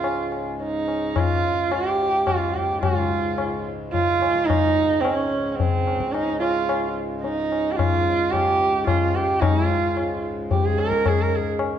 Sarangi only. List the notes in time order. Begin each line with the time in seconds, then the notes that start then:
Already playing: F4
0.63 D#4
1.18 F4
1.73 G4
2.28 F4
2.55 G4
2.83 F4
3.93 F4
4.46 D#4
5.01 C4
5.14 C#4
5.52 C#4
5.57 C4
6.13 D#4
6.40 F4
7.22 D#4
7.72 G4
7.76 F4
8.31 G4
8.88 F4
9.15 G4
9.41 D#4
9.65 F4
10.52 G4
10.66 G#4
10.79 A#4
11.08 G#4
11.22 A#4
11.36 G#4